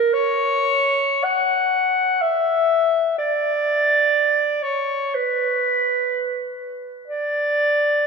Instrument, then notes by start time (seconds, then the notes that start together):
clarinet
Already playing: A#4
0.13 C#5
1.24 F#5
2.22 E5
3.18 D5
4.63 C#5
5.15 B4
7.08 D5